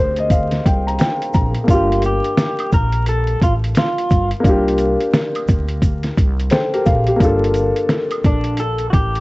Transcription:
0.00 0.58 D2 medium
0.00 1.63 A#3 medium
0.00 1.64 D4 medium
0.00 1.65 F4 medium
0.00 1.67 G4 medium
0.00 0.17 C5 medium
0.16 0.30 D#5 medium
0.16 closed hi-hat soft
0.30 0.63 F5 medium
0.30 kick medium
0.30 closed hi-hat medium
0.30 maracas medium
0.51 snare soft
0.51 closed hi-hat soft
0.65 0.96 C2 loud
0.65 0.85 G5 medium
0.65 kick medium
0.65 closed hi-hat medium
0.65 maracas soft
0.87 0.99 A#5 medium
0.87 closed hi-hat soft
0.98 1.32 G5 medium
0.98 snare loud
0.98 closed hi-hat medium
0.98 maracas medium
1.22 closed hi-hat soft
1.34 1.54 A#1 loud
1.34 1.66 A#5 medium
1.34 kick medium
1.34 closed hi-hat medium
1.34 maracas soft
1.55 closed hi-hat soft
1.64 4.38 A#3 medium
1.64 4.40 D4 medium
1.68 2.18 G1 loud
1.68 4.41 F4 medium
1.68 2.05 F4 medium
1.68 kick loud
1.68 closed hi-hat medium
1.68 maracas medium
1.73 4.43 G4 medium
1.92 closed hi-hat soft
2.02 2.74 G4 loud
2.02 closed hi-hat medium
2.02 maracas medium
2.24 closed hi-hat soft
2.37 snare medium
2.37 closed hi-hat medium
2.37 maracas medium
2.59 closed hi-hat soft
2.59 high woodblock medium
2.72 3.34 A#1 medium
2.72 3.08 A#4 loud
2.72 kick medium
2.72 closed hi-hat medium
2.72 maracas medium
2.92 closed hi-hat soft
3.06 3.43 A4 loud
3.06 closed hi-hat medium
3.06 maracas medium
3.27 closed hi-hat soft
3.42 3.72 A1 loud
3.42 3.52 F4 medium
3.42 kick medium
3.42 closed hi-hat medium
3.42 maracas soft
3.64 closed hi-hat soft
3.75 4.29 F4 medium
3.75 snare loud
3.75 closed hi-hat medium
3.75 maracas medium
3.98 closed hi-hat soft
4.10 4.30 G1 medium
4.10 kick medium
4.10 closed hi-hat medium
4.10 maracas medium
4.31 closed hi-hat soft
4.40 7.14 A#3 medium
4.40 7.16 D4 medium
4.45 4.94 C2 loud
4.45 7.17 F4 medium
4.45 kick loud
4.45 closed hi-hat medium
4.45 maracas medium
4.49 6.50 G4 medium
4.68 closed hi-hat soft
4.78 closed hi-hat medium
4.78 maracas soft
5.01 closed hi-hat soft
5.14 snare loud
5.14 closed hi-hat medium
5.14 maracas medium
5.35 closed hi-hat medium
5.35 high woodblock medium
5.48 6.10 D2 medium
5.48 kick medium
5.48 closed hi-hat medium
5.48 maracas soft
5.69 closed hi-hat soft
5.82 kick medium
5.82 closed hi-hat medium
5.82 maracas medium
6.03 snare soft
6.03 closed hi-hat soft
6.17 6.48 C2 loud
6.17 kick medium
6.17 closed hi-hat medium
6.17 maracas soft
6.40 closed hi-hat soft
6.50 6.72 A4 medium
6.50 6.72 C5 medium
6.50 6.83 G5 medium
6.50 snare loud
6.50 closed hi-hat medium
6.50 maracas medium
6.73 7.06 G4 medium
6.73 7.06 A#4 medium
6.73 closed hi-hat soft
6.86 7.06 A#1 medium
6.86 7.18 F5 medium
6.86 kick medium
6.86 closed hi-hat medium
6.86 maracas soft
7.07 7.41 G4 medium
7.07 closed hi-hat soft
7.16 9.20 A#3 medium
7.16 9.20 D4 medium
7.20 7.70 G1 medium
7.20 9.20 F4 medium
7.20 kick loud
7.20 closed hi-hat medium
7.20 maracas medium
7.25 9.20 A4 medium
7.44 closed hi-hat soft
7.54 closed hi-hat medium
7.54 maracas soft
7.76 closed hi-hat soft
7.89 snare medium
7.89 closed hi-hat medium
7.89 maracas medium
8.11 closed hi-hat soft
8.11 high woodblock medium
8.24 8.85 A#1 medium
8.24 8.60 D4 medium
8.24 kick loud
8.24 closed hi-hat medium
8.24 maracas soft
8.44 closed hi-hat soft
8.57 8.89 A4 loud
8.57 closed hi-hat medium
8.57 maracas medium
8.78 closed hi-hat soft
8.90 9.20 A1 loud
8.90 8.93 F#4 medium
8.90 9.20 G4 loud
8.90 kick medium
8.90 closed hi-hat medium
8.90 maracas soft
9.15 closed hi-hat soft

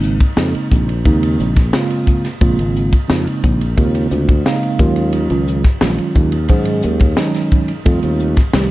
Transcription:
0.00 0.17 G#1 medium
0.00 0.21 C#3 medium
0.00 0.22 G#3 medium
0.00 0.22 A#3 medium
0.00 0.22 C4 medium
0.00 0.22 D#4 medium
0.00 hi-hat pedal medium
0.20 kick medium
0.20 ride medium
0.36 0.53 F2 medium
0.36 0.90 C#3 medium
0.36 0.90 G#3 medium
0.36 0.90 A#3 medium
0.36 0.90 C4 medium
0.36 0.90 D#4 medium
0.36 snare loud
0.36 ride medium
0.55 muted fretless electric bass stroke soft
0.55 ride medium
0.71 1.02 A#1 medium
0.71 kick medium
0.71 hi-hat pedal medium
0.89 ride medium
1.04 1.36 D#2 medium
1.04 1.58 C#3 medium
1.04 1.58 G#3 medium
1.04 1.58 A#3 medium
1.04 1.58 C4 medium
1.04 1.58 D#4 medium
1.04 kick medium
1.04 ride medium
1.23 ride medium
1.40 1.71 A#1 medium
1.40 hi-hat pedal medium
1.57 kick medium
1.57 snare soft
1.57 ride medium
1.73 2.26 C#3 medium
1.73 2.26 G#3 medium
1.73 2.26 A#3 medium
1.73 2.27 C4 medium
1.73 2.26 F4 medium
1.73 snare loud
1.73 ride medium
1.90 ride medium
2.07 kick medium
2.07 hi-hat pedal medium
2.25 snare soft
2.25 ride medium
2.41 2.57 A#1 medium
2.41 2.94 C#3 medium
2.41 2.94 G#3 medium
2.41 2.94 A#3 medium
2.41 2.94 C4 medium
2.41 2.94 F4 medium
2.41 kick loud
2.41 ride medium
2.59 2.90 G#1 medium
2.59 ride medium
2.76 hi-hat pedal medium
2.93 kick medium
2.93 ride medium
3.08 3.25 F2 medium
3.08 3.62 C#3 medium
3.08 3.62 G#3 medium
3.08 3.62 A#3 medium
3.08 3.62 C4 medium
3.08 3.62 D#4 medium
3.08 snare loud
3.08 ride medium
3.27 muted fretless electric bass stroke soft
3.27 ride medium
3.44 3.75 A#1 medium
3.44 kick medium
3.44 hi-hat pedal medium
3.61 ride medium
3.77 4.08 D#2 medium
3.77 4.30 C#3 medium
3.77 4.30 G#3 medium
3.77 4.30 A#3 medium
3.77 4.30 C4 medium
3.77 4.31 F4 medium
3.77 kick medium
3.77 ride medium
3.95 ride medium
4.11 4.42 D2 medium
4.11 hi-hat pedal medium
4.29 kick medium
4.29 ride medium
4.45 4.79 C#3 medium
4.45 4.79 G#3 medium
4.45 4.79 A#3 medium
4.45 4.79 C4 medium
4.45 4.79 D#4 loud
4.45 5.09 F5 medium
4.45 snare loud
4.45 ride medium
4.63 ride medium
4.79 5.26 D#2 medium
4.79 5.61 D#3 medium
4.79 5.61 F#3 medium
4.79 5.61 G#3 medium
4.79 5.61 C#4 medium
4.79 5.61 F4 loud
4.79 kick medium
4.79 hi-hat pedal medium
4.96 ride medium
5.13 ride medium
5.30 5.62 C#2 medium
5.30 ride medium
5.47 hi-hat pedal medium
5.64 kick medium
5.64 snare soft
5.64 ride medium
5.81 5.97 A#1 medium
5.81 6.35 D#3 medium
5.81 6.34 F#3 medium
5.81 6.34 G#3 medium
5.81 6.35 C#4 medium
5.81 6.35 F4 medium
5.81 snare loud
5.81 ride medium
5.98 muted fretless electric bass stroke soft
5.98 ride medium
6.15 6.47 D#2 medium
6.15 kick medium
6.15 hi-hat pedal medium
6.32 ride medium
6.48 6.80 G#2 medium
6.48 7.02 D#3 medium
6.48 7.02 F#3 medium
6.48 7.02 G#3 medium
6.48 7.02 C#4 medium
6.48 7.03 G#4 medium
6.48 kick medium
6.48 ride medium
6.65 ride medium
6.82 7.15 D#2 medium
6.82 hi-hat pedal medium
6.99 kick medium
6.99 ride medium
7.17 7.70 D#3 medium
7.17 7.71 F#3 medium
7.17 7.71 G#3 medium
7.17 7.71 C#4 medium
7.17 7.71 D#4 loud
7.17 snare loud
7.17 ride medium
7.34 snare soft
7.34 ride medium
7.51 kick medium
7.51 hi-hat pedal medium
7.68 ride medium
7.85 8.01 F2 medium
7.85 8.38 D#3 medium
7.85 8.38 G3 medium
7.85 8.38 A3 medium
7.85 8.39 C4 medium
7.85 8.39 F4 medium
7.85 kick loud
7.85 ride medium
8.03 8.34 D#2 medium
8.03 ride medium
8.19 hi-hat pedal medium
8.37 kick medium
8.37 snare soft
8.37 ride medium
8.53 8.69 C2 medium
8.53 8.71 D#3 medium
8.53 8.71 G3 medium
8.53 8.71 A3 medium
8.53 8.71 C4 medium
8.53 8.71 G4 medium
8.53 snare loud
8.53 ride medium

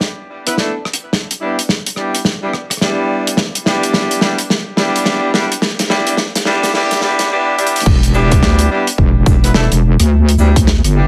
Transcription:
0.01 snare soft
0.47 0.55 B3 medium
0.47 0.55 D4 medium
0.47 0.55 E4 medium
0.47 0.55 B4 medium
0.47 cross-stick soft
0.47 closed hi-hat medium
0.57 0.73 A3 medium
0.57 0.73 B3 medium
0.57 0.73 D4 medium
0.57 0.73 E4 medium
0.57 0.73 A4 medium
0.57 snare soft
0.85 cross-stick soft
0.93 closed hi-hat medium
1.13 snare medium
1.31 closed hi-hat medium
1.41 1.57 G3 medium
1.41 1.57 B3 medium
1.41 1.57 D4 medium
1.41 1.57 E4 medium
1.41 1.57 G4 medium
1.59 closed hi-hat medium
1.69 snare medium
1.86 closed hi-hat medium
1.96 2.20 G3 medium
1.96 2.20 B3 medium
1.96 2.20 D4 medium
1.96 2.19 E4 medium
1.96 2.20 G4 medium
1.96 cross-stick soft
2.15 closed hi-hat medium
2.25 snare medium
2.43 2.52 G3 medium
2.43 2.52 B3 medium
2.43 2.52 D4 medium
2.43 2.52 E4 medium
2.43 2.52 G4 medium
2.53 cross-stick soft
2.70 cross-stick soft
2.70 closed hi-hat medium
2.77 cross-stick soft
2.81 3.37 G3 medium
2.81 3.37 B3 medium
2.81 3.37 D4 medium
2.81 3.37 E4 medium
2.81 3.37 G4 medium
2.81 snare medium
2.87 cross-stick soft
3.27 closed hi-hat medium
3.37 snare medium
3.55 closed hi-hat medium
3.65 4.19 G3 medium
3.65 4.19 B3 loud
3.65 4.19 D4 medium
3.65 4.19 E4 medium
3.65 4.19 G4 loud
3.65 snare medium
3.83 closed hi-hat medium
3.94 snare medium
4.11 closed hi-hat medium
4.21 4.38 G3 medium
4.21 4.38 B3 medium
4.21 4.38 D4 medium
4.21 4.38 E4 medium
4.21 4.38 G4 loud
4.21 snare medium
4.38 closed hi-hat medium
4.50 snare medium
4.77 5.31 G3 loud
4.77 5.31 B3 loud
4.77 5.31 D4 medium
4.77 5.31 E4 medium
4.77 5.31 G4 loud
4.77 snare medium
4.96 closed hi-hat medium
5.05 snare medium
5.34 5.50 G3 medium
5.34 5.50 B3 medium
5.34 5.50 D4 medium
5.34 5.50 E4 medium
5.34 5.50 G4 loud
5.34 snare medium
5.52 closed hi-hat medium
5.62 snare loud
5.79 snare medium
5.79 closed hi-hat medium
5.90 6.16 G3 loud
5.90 6.16 B3 loud
5.90 6.16 D4 medium
5.90 6.16 E4 medium
5.90 6.16 G4 loud
5.90 snare loud
6.07 closed hi-hat medium
6.17 snare loud
6.36 snare medium
6.36 closed hi-hat medium
6.45 6.72 G3 loud
6.45 6.72 B3 loud
6.45 6.72 D4 loud
6.45 6.72 E4 loud
6.45 6.72 G4 loud
6.45 snare loud
6.63 snare loud
6.63 closed hi-hat medium
6.74 7.00 G3 loud
6.74 7.00 B3 loud
6.74 7.00 D4 loud
6.74 7.00 E4 medium
6.74 7.00 G4 loud
6.74 snare medium
6.91 snare medium
6.91 closed hi-hat medium
7.01 7.28 G3 loud
7.01 7.28 B3 loud
7.01 7.28 D4 loud
7.01 7.28 E4 loud
7.01 7.28 G4 loud
7.01 snare loud
7.19 snare medium
7.19 closed hi-hat medium
7.30 7.56 G3 loud
7.30 7.56 B3 loud
7.30 7.56 D4 loud
7.30 7.56 E4 loud
7.30 7.56 G4 loud
7.58 7.84 G3 loud
7.58 7.84 B3 loud
7.58 7.84 D4 medium
7.58 7.84 E4 medium
7.58 7.84 G4 loud
7.58 closed hi-hat soft
7.67 closed hi-hat medium
7.76 closed hi-hat medium
7.80 closed hi-hat medium
7.86 8.40 E1 loud
7.86 kick loud
7.86 crash loud
8.03 closed hi-hat medium
8.14 8.68 G3 loud
8.14 8.68 B3 loud
8.14 8.68 D4 medium
8.14 8.68 E4 medium
8.14 8.68 G4 loud
8.14 shaker medium
8.32 kick loud
8.32 closed hi-hat medium
8.42 8.68 D2 loud
8.42 snare loud
8.59 closed hi-hat medium
8.70 8.86 G3 loud
8.70 8.86 B3 loud
8.70 8.86 D4 medium
8.70 8.86 E4 medium
8.70 8.86 G4 loud
8.87 closed hi-hat medium
8.98 9.25 E1 medium
8.98 kick medium
9.26 9.53 E1 loud
9.26 kick loud
9.26 shaker medium
9.44 9.53 B3 medium
9.44 9.53 D4 medium
9.44 9.53 E4 medium
9.44 9.53 B4 medium
9.44 closed hi-hat medium
9.54 9.69 E1 loud
9.54 9.70 A3 medium
9.54 9.70 B3 medium
9.54 9.70 D4 medium
9.54 9.70 E4 medium
9.54 9.70 A4 medium
9.54 snare loud
9.71 9.97 E1 loud
9.71 closed hi-hat medium
10.00 10.36 D2 medium
10.00 cross-stick soft
10.00 closed hi-hat medium
10.29 closed hi-hat medium
10.38 10.81 D2 loud
10.38 10.54 G3 medium
10.38 10.54 B3 medium
10.38 10.54 D4 medium
10.38 10.54 E4 medium
10.38 10.54 G4 medium
10.38 shaker medium
10.56 kick loud
10.56 closed hi-hat medium
10.67 snare loud
10.84 11.07 G1 loud
10.84 cross-stick soft
10.84 closed hi-hat medium
10.95 11.07 G3 medium
10.95 11.07 B3 medium
10.95 11.07 D4 medium
10.95 11.07 E4 medium
10.95 11.07 G4 medium

